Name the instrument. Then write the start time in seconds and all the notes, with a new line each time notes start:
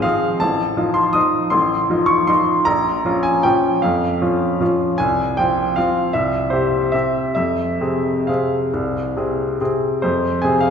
grand piano
0.02 F3 C4 G#4 F5
0.40 A1 A5
0.77 F3 D#4 F4
0.94 C6
1.13 F3 D#4 F4 D#6
1.50 A1 C6
1.90 F3 D#4 F4
2.06 C#6
2.27 F3 D#4 F4 C6
2.65 A#1 A#5
3.05 F3 C#4 F4
3.23 G#5
3.43 F3 C#4 F4 G5
3.82 F2 F5
4.21 F3 C#4 F4
4.61 F3 C#4 F4
4.98 C2 G#5
5.37 F3 C4 F4 G5
5.76 F3 C4 F4 F5
6.13 C2 E5
6.50 C3 C4 G4 C5
6.92 C3 C4 G4 E5
7.35 F2 E5
7.81 C3 C4 G#4
8.27 C3 C4 G#4 F5
8.74 C2
9.16 C3 C4 G#4
9.60 C3 C4 G#4
10.02 F2 C5
10.42 C3 C4 G#4 G#5
10.61 F5